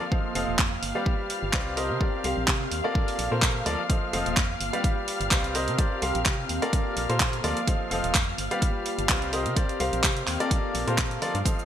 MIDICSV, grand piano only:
0, 0, Header, 1, 2, 480
1, 0, Start_track
1, 0, Tempo, 472441
1, 119, Time_signature, 4, 2, 24, 8
1, 11836, End_track
2, 0, Start_track
2, 0, Title_t, "Grand piano"
2, 0, Program_c, 0, 0
2, 118, Note_on_c, 0, 53, 74
2, 118, Note_on_c, 0, 72, 67
2, 118, Note_on_c, 0, 75, 66
2, 118, Note_on_c, 0, 77, 80
2, 119, Note_on_c, 0, 69, 67
2, 325, Note_off_c, 0, 53, 0
2, 326, Note_off_c, 0, 69, 0
2, 326, Note_off_c, 0, 72, 0
2, 326, Note_off_c, 0, 75, 0
2, 326, Note_off_c, 0, 77, 0
2, 358, Note_on_c, 0, 53, 80
2, 358, Note_on_c, 0, 69, 74
2, 358, Note_on_c, 0, 72, 75
2, 358, Note_on_c, 0, 75, 74
2, 358, Note_on_c, 0, 77, 92
2, 570, Note_off_c, 0, 53, 0
2, 570, Note_off_c, 0, 69, 0
2, 570, Note_off_c, 0, 72, 0
2, 570, Note_off_c, 0, 75, 0
2, 570, Note_off_c, 0, 77, 0
2, 967, Note_on_c, 0, 55, 84
2, 967, Note_on_c, 0, 67, 77
2, 967, Note_on_c, 0, 71, 77
2, 967, Note_on_c, 0, 74, 77
2, 967, Note_on_c, 0, 77, 90
2, 1531, Note_off_c, 0, 55, 0
2, 1531, Note_off_c, 0, 67, 0
2, 1531, Note_off_c, 0, 71, 0
2, 1531, Note_off_c, 0, 77, 0
2, 1532, Note_off_c, 0, 74, 0
2, 1558, Note_on_c, 0, 60, 86
2, 1558, Note_on_c, 0, 67, 81
2, 1558, Note_on_c, 0, 71, 82
2, 1558, Note_on_c, 0, 74, 82
2, 1558, Note_on_c, 0, 77, 101
2, 1772, Note_off_c, 0, 60, 0
2, 1772, Note_off_c, 0, 67, 0
2, 1772, Note_off_c, 0, 71, 0
2, 1772, Note_off_c, 0, 74, 0
2, 1772, Note_off_c, 0, 77, 0
2, 1797, Note_on_c, 0, 67, 74
2, 1797, Note_on_c, 0, 70, 74
2, 1797, Note_on_c, 0, 72, 74
2, 1797, Note_on_c, 0, 75, 91
2, 1798, Note_on_c, 0, 60, 79
2, 2005, Note_off_c, 0, 60, 0
2, 2005, Note_off_c, 0, 67, 0
2, 2005, Note_off_c, 0, 70, 0
2, 2005, Note_off_c, 0, 72, 0
2, 2005, Note_off_c, 0, 75, 0
2, 2037, Note_on_c, 0, 60, 71
2, 2038, Note_on_c, 0, 67, 67
2, 2038, Note_on_c, 0, 70, 66
2, 2038, Note_on_c, 0, 72, 67
2, 2038, Note_on_c, 0, 74, 81
2, 2252, Note_off_c, 0, 60, 0
2, 2252, Note_off_c, 0, 67, 0
2, 2252, Note_off_c, 0, 70, 0
2, 2252, Note_off_c, 0, 72, 0
2, 2252, Note_off_c, 0, 74, 0
2, 2279, Note_on_c, 0, 60, 72
2, 2279, Note_on_c, 0, 67, 67
2, 2279, Note_on_c, 0, 70, 66
2, 2279, Note_on_c, 0, 72, 69
2, 2279, Note_on_c, 0, 77, 81
2, 2858, Note_off_c, 0, 60, 0
2, 2858, Note_off_c, 0, 67, 0
2, 2858, Note_off_c, 0, 70, 0
2, 2858, Note_off_c, 0, 72, 0
2, 2858, Note_off_c, 0, 77, 0
2, 2888, Note_on_c, 0, 58, 92
2, 2888, Note_on_c, 0, 65, 84
2, 2888, Note_on_c, 0, 69, 85
2, 2888, Note_on_c, 0, 70, 84
2, 2888, Note_on_c, 0, 74, 100
2, 3337, Note_off_c, 0, 58, 0
2, 3337, Note_off_c, 0, 65, 0
2, 3337, Note_off_c, 0, 69, 0
2, 3337, Note_off_c, 0, 70, 0
2, 3337, Note_off_c, 0, 74, 0
2, 3369, Note_on_c, 0, 58, 83
2, 3369, Note_on_c, 0, 65, 71
2, 3369, Note_on_c, 0, 69, 73
2, 3369, Note_on_c, 0, 70, 74
2, 3369, Note_on_c, 0, 72, 88
2, 3692, Note_off_c, 0, 58, 0
2, 3692, Note_off_c, 0, 65, 0
2, 3692, Note_off_c, 0, 69, 0
2, 3692, Note_off_c, 0, 70, 0
2, 3692, Note_off_c, 0, 72, 0
2, 3718, Note_on_c, 0, 53, 85
2, 3718, Note_on_c, 0, 65, 74
2, 3718, Note_on_c, 0, 69, 78
2, 3718, Note_on_c, 0, 70, 77
2, 3718, Note_on_c, 0, 74, 94
2, 3858, Note_off_c, 0, 53, 0
2, 3858, Note_off_c, 0, 65, 0
2, 3858, Note_off_c, 0, 69, 0
2, 3858, Note_off_c, 0, 70, 0
2, 3858, Note_off_c, 0, 74, 0
2, 3957, Note_on_c, 0, 69, 65
2, 3957, Note_on_c, 0, 72, 67
2, 3958, Note_on_c, 0, 53, 73
2, 3958, Note_on_c, 0, 75, 65
2, 3958, Note_on_c, 0, 77, 79
2, 4165, Note_off_c, 0, 53, 0
2, 4165, Note_off_c, 0, 69, 0
2, 4165, Note_off_c, 0, 72, 0
2, 4165, Note_off_c, 0, 75, 0
2, 4165, Note_off_c, 0, 77, 0
2, 4198, Note_on_c, 0, 53, 77
2, 4198, Note_on_c, 0, 69, 74
2, 4198, Note_on_c, 0, 72, 72
2, 4199, Note_on_c, 0, 75, 74
2, 4199, Note_on_c, 0, 77, 86
2, 4410, Note_off_c, 0, 53, 0
2, 4410, Note_off_c, 0, 69, 0
2, 4410, Note_off_c, 0, 72, 0
2, 4410, Note_off_c, 0, 75, 0
2, 4410, Note_off_c, 0, 77, 0
2, 4807, Note_on_c, 0, 55, 83
2, 4807, Note_on_c, 0, 67, 75
2, 4807, Note_on_c, 0, 74, 79
2, 4808, Note_on_c, 0, 71, 74
2, 4808, Note_on_c, 0, 77, 91
2, 5371, Note_off_c, 0, 74, 0
2, 5372, Note_off_c, 0, 55, 0
2, 5372, Note_off_c, 0, 67, 0
2, 5372, Note_off_c, 0, 71, 0
2, 5372, Note_off_c, 0, 77, 0
2, 5397, Note_on_c, 0, 67, 78
2, 5397, Note_on_c, 0, 77, 96
2, 5398, Note_on_c, 0, 60, 89
2, 5398, Note_on_c, 0, 71, 80
2, 5398, Note_on_c, 0, 74, 79
2, 5612, Note_off_c, 0, 60, 0
2, 5612, Note_off_c, 0, 67, 0
2, 5612, Note_off_c, 0, 71, 0
2, 5612, Note_off_c, 0, 74, 0
2, 5612, Note_off_c, 0, 77, 0
2, 5637, Note_on_c, 0, 67, 75
2, 5637, Note_on_c, 0, 75, 92
2, 5638, Note_on_c, 0, 60, 80
2, 5638, Note_on_c, 0, 70, 76
2, 5638, Note_on_c, 0, 72, 74
2, 5845, Note_off_c, 0, 60, 0
2, 5845, Note_off_c, 0, 67, 0
2, 5845, Note_off_c, 0, 70, 0
2, 5845, Note_off_c, 0, 72, 0
2, 5845, Note_off_c, 0, 75, 0
2, 5876, Note_on_c, 0, 60, 75
2, 5876, Note_on_c, 0, 67, 67
2, 5876, Note_on_c, 0, 72, 68
2, 5876, Note_on_c, 0, 74, 80
2, 5877, Note_on_c, 0, 70, 65
2, 6091, Note_off_c, 0, 60, 0
2, 6091, Note_off_c, 0, 67, 0
2, 6091, Note_off_c, 0, 70, 0
2, 6091, Note_off_c, 0, 72, 0
2, 6091, Note_off_c, 0, 74, 0
2, 6117, Note_on_c, 0, 70, 66
2, 6118, Note_on_c, 0, 60, 74
2, 6118, Note_on_c, 0, 67, 68
2, 6118, Note_on_c, 0, 72, 67
2, 6118, Note_on_c, 0, 77, 80
2, 6697, Note_off_c, 0, 60, 0
2, 6697, Note_off_c, 0, 67, 0
2, 6697, Note_off_c, 0, 70, 0
2, 6697, Note_off_c, 0, 72, 0
2, 6697, Note_off_c, 0, 77, 0
2, 6727, Note_on_c, 0, 58, 91
2, 6728, Note_on_c, 0, 65, 85
2, 6728, Note_on_c, 0, 69, 84
2, 6728, Note_on_c, 0, 70, 87
2, 6728, Note_on_c, 0, 74, 100
2, 7177, Note_off_c, 0, 58, 0
2, 7177, Note_off_c, 0, 65, 0
2, 7177, Note_off_c, 0, 69, 0
2, 7177, Note_off_c, 0, 70, 0
2, 7177, Note_off_c, 0, 74, 0
2, 7208, Note_on_c, 0, 58, 82
2, 7208, Note_on_c, 0, 65, 74
2, 7208, Note_on_c, 0, 69, 73
2, 7208, Note_on_c, 0, 70, 78
2, 7208, Note_on_c, 0, 72, 94
2, 7532, Note_off_c, 0, 58, 0
2, 7532, Note_off_c, 0, 65, 0
2, 7532, Note_off_c, 0, 69, 0
2, 7532, Note_off_c, 0, 70, 0
2, 7532, Note_off_c, 0, 72, 0
2, 7558, Note_on_c, 0, 53, 85
2, 7558, Note_on_c, 0, 65, 78
2, 7558, Note_on_c, 0, 69, 79
2, 7558, Note_on_c, 0, 70, 80
2, 7558, Note_on_c, 0, 74, 94
2, 7698, Note_off_c, 0, 53, 0
2, 7698, Note_off_c, 0, 65, 0
2, 7698, Note_off_c, 0, 69, 0
2, 7698, Note_off_c, 0, 70, 0
2, 7698, Note_off_c, 0, 74, 0
2, 7797, Note_on_c, 0, 75, 67
2, 7798, Note_on_c, 0, 53, 73
2, 7798, Note_on_c, 0, 69, 66
2, 7798, Note_on_c, 0, 72, 66
2, 7798, Note_on_c, 0, 77, 78
2, 8005, Note_off_c, 0, 53, 0
2, 8005, Note_off_c, 0, 69, 0
2, 8005, Note_off_c, 0, 72, 0
2, 8005, Note_off_c, 0, 75, 0
2, 8005, Note_off_c, 0, 77, 0
2, 8037, Note_on_c, 0, 77, 89
2, 8038, Note_on_c, 0, 53, 80
2, 8038, Note_on_c, 0, 69, 73
2, 8038, Note_on_c, 0, 72, 73
2, 8038, Note_on_c, 0, 75, 74
2, 8250, Note_off_c, 0, 53, 0
2, 8250, Note_off_c, 0, 69, 0
2, 8250, Note_off_c, 0, 72, 0
2, 8250, Note_off_c, 0, 75, 0
2, 8250, Note_off_c, 0, 77, 0
2, 8647, Note_on_c, 0, 67, 77
2, 8647, Note_on_c, 0, 74, 80
2, 8647, Note_on_c, 0, 77, 93
2, 8648, Note_on_c, 0, 55, 84
2, 8648, Note_on_c, 0, 71, 76
2, 9212, Note_off_c, 0, 55, 0
2, 9212, Note_off_c, 0, 67, 0
2, 9212, Note_off_c, 0, 71, 0
2, 9212, Note_off_c, 0, 74, 0
2, 9212, Note_off_c, 0, 77, 0
2, 9237, Note_on_c, 0, 60, 88
2, 9237, Note_on_c, 0, 67, 82
2, 9237, Note_on_c, 0, 71, 80
2, 9237, Note_on_c, 0, 74, 79
2, 9237, Note_on_c, 0, 77, 98
2, 9452, Note_off_c, 0, 60, 0
2, 9452, Note_off_c, 0, 67, 0
2, 9452, Note_off_c, 0, 71, 0
2, 9452, Note_off_c, 0, 74, 0
2, 9452, Note_off_c, 0, 77, 0
2, 9477, Note_on_c, 0, 70, 76
2, 9478, Note_on_c, 0, 60, 81
2, 9478, Note_on_c, 0, 67, 74
2, 9478, Note_on_c, 0, 72, 75
2, 9478, Note_on_c, 0, 75, 92
2, 9685, Note_off_c, 0, 60, 0
2, 9685, Note_off_c, 0, 67, 0
2, 9685, Note_off_c, 0, 70, 0
2, 9685, Note_off_c, 0, 72, 0
2, 9685, Note_off_c, 0, 75, 0
2, 9718, Note_on_c, 0, 60, 74
2, 9718, Note_on_c, 0, 67, 66
2, 9718, Note_on_c, 0, 70, 66
2, 9718, Note_on_c, 0, 72, 68
2, 9718, Note_on_c, 0, 74, 80
2, 9932, Note_off_c, 0, 60, 0
2, 9932, Note_off_c, 0, 67, 0
2, 9932, Note_off_c, 0, 70, 0
2, 9932, Note_off_c, 0, 72, 0
2, 9932, Note_off_c, 0, 74, 0
2, 9959, Note_on_c, 0, 60, 72
2, 9959, Note_on_c, 0, 67, 68
2, 9959, Note_on_c, 0, 70, 67
2, 9959, Note_on_c, 0, 72, 68
2, 9959, Note_on_c, 0, 77, 82
2, 10538, Note_off_c, 0, 60, 0
2, 10538, Note_off_c, 0, 67, 0
2, 10538, Note_off_c, 0, 70, 0
2, 10538, Note_off_c, 0, 72, 0
2, 10538, Note_off_c, 0, 77, 0
2, 10568, Note_on_c, 0, 70, 87
2, 10569, Note_on_c, 0, 58, 89
2, 10569, Note_on_c, 0, 65, 83
2, 10569, Note_on_c, 0, 69, 85
2, 10569, Note_on_c, 0, 74, 103
2, 11018, Note_off_c, 0, 58, 0
2, 11018, Note_off_c, 0, 65, 0
2, 11018, Note_off_c, 0, 69, 0
2, 11018, Note_off_c, 0, 70, 0
2, 11018, Note_off_c, 0, 74, 0
2, 11048, Note_on_c, 0, 65, 73
2, 11048, Note_on_c, 0, 70, 77
2, 11049, Note_on_c, 0, 58, 80
2, 11049, Note_on_c, 0, 69, 74
2, 11049, Note_on_c, 0, 72, 86
2, 11372, Note_off_c, 0, 58, 0
2, 11372, Note_off_c, 0, 65, 0
2, 11372, Note_off_c, 0, 69, 0
2, 11372, Note_off_c, 0, 70, 0
2, 11372, Note_off_c, 0, 72, 0
2, 11398, Note_on_c, 0, 53, 84
2, 11398, Note_on_c, 0, 65, 78
2, 11398, Note_on_c, 0, 69, 78
2, 11398, Note_on_c, 0, 70, 77
2, 11398, Note_on_c, 0, 74, 93
2, 11538, Note_off_c, 0, 53, 0
2, 11538, Note_off_c, 0, 65, 0
2, 11538, Note_off_c, 0, 69, 0
2, 11538, Note_off_c, 0, 70, 0
2, 11538, Note_off_c, 0, 74, 0
2, 11638, Note_on_c, 0, 53, 72
2, 11638, Note_on_c, 0, 69, 66
2, 11638, Note_on_c, 0, 72, 67
2, 11638, Note_on_c, 0, 75, 67
2, 11638, Note_on_c, 0, 77, 80
2, 11836, Note_off_c, 0, 53, 0
2, 11836, Note_off_c, 0, 69, 0
2, 11836, Note_off_c, 0, 72, 0
2, 11836, Note_off_c, 0, 75, 0
2, 11836, Note_off_c, 0, 77, 0
2, 11836, End_track
0, 0, End_of_file